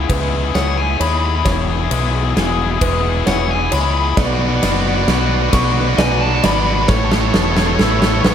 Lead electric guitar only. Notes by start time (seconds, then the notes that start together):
0.55 F#5
0.77 G#5
1.01 B5
1.09 B5
1.18 B5
1.26 B5
1.35 B5
3.27 F#5
3.51 G#5
3.73 B5
3.81 B5
3.91 B5
3.98 B5
4.05 B5
5.99 G#5
6.22 A5
6.45 B5
6.53 B5
6.62 B5
6.71 B5
6.79 B5